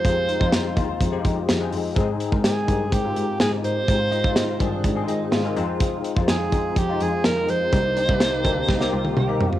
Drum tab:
HH |x-x-x-x-x-x-x-o-|x-x-x-x-x-x-x-x-|x-x-x-x-x-x-x-x-|x-x-x-x-x-x-x-x-|
TB |----x-------x---|----x-------x---|----x-------x---|----x-------x---|
SD |----o-------o---|----o-------o---|----o-------o---|----o-------o---|
T1 |----------------|----------------|----------------|----------------|
T2 |----------------|----------------|----------------|----------------|
FT |----------------|----------------|----------------|----------------|
BD |o--o--o-o-o-----|o--o--o-o-------|o--o--o-o-------|o--o--o-o-------|

HH |x-x-x-x---------|
TB |----x-----------|
SD |----o---oo------|
T1 |-----------o----|
T2 |------------o---|
FT |--------------oo|
BD |o--o--o-o-------|